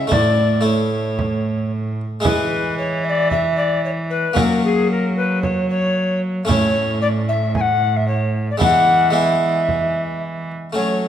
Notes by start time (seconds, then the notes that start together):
Already playing: C#3
0.07 A2 A3 E4 D5
0.12 frame drum
0.61 A3 E4 C#5
1.19 frame drum
2.20 E3 G#3 E4 G#4
2.25 E3 B4, frame drum
2.78 C#5
3.04 E5
3.09 D5
3.31 E5, frame drum
3.57 D5
3.84 C#5
4.10 B4
4.33 F#3 A#3 C#4 F#4, frame drum
4.37 A#4
4.64 G#4
4.90 A#4
5.16 B4
5.42 C#5, frame drum
5.70 C#5
6.45 A2 A3 C#4 E4
6.49 C#5, frame drum
7.01 D5
7.28 E5
7.55 G#5, frame drum
7.61 F#5
7.96 E5
8.08 C#5
8.50 D5
8.57 E3 G#3 B3 E4, frame drum
8.62 F#5
9.11 G#3 B3 E4
9.15 E5
9.69 frame drum
10.73 F#3 A3 C#4 C#5